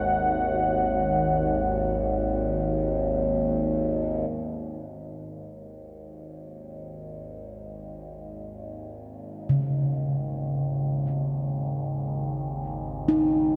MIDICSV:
0, 0, Header, 1, 4, 480
1, 0, Start_track
1, 0, Key_signature, 5, "minor"
1, 0, Tempo, 500000
1, 13018, End_track
2, 0, Start_track
2, 0, Title_t, "Analog synth pad"
2, 0, Program_c, 0, 89
2, 0, Note_on_c, 0, 63, 83
2, 0, Note_on_c, 0, 68, 80
2, 0, Note_on_c, 0, 71, 78
2, 0, Note_on_c, 0, 78, 82
2, 4127, Note_off_c, 0, 63, 0
2, 4128, Note_off_c, 0, 68, 0
2, 4135, Note_off_c, 0, 71, 0
2, 4185, Note_off_c, 0, 78, 0
2, 13018, End_track
3, 0, Start_track
3, 0, Title_t, "Kettle gongs"
3, 0, Program_c, 1, 14
3, 9114, Note_on_c, 1, 49, 56
3, 12561, Note_on_c, 1, 63, 70
3, 13018, Note_off_c, 1, 49, 0
3, 13018, Note_off_c, 1, 63, 0
3, 13018, End_track
4, 0, Start_track
4, 0, Title_t, "Synth drone"
4, 0, Program_c, 2, 95
4, 0, Note_on_c, 2, 32, 69
4, 0, Note_on_c, 2, 39, 73
4, 4117, Note_off_c, 2, 32, 0
4, 4126, Note_off_c, 2, 39, 0
4, 4128, Note_on_c, 2, 32, 69
4, 4138, Note_on_c, 2, 39, 74
4, 13018, Note_off_c, 2, 32, 0
4, 13018, Note_off_c, 2, 39, 0
4, 13018, End_track
0, 0, End_of_file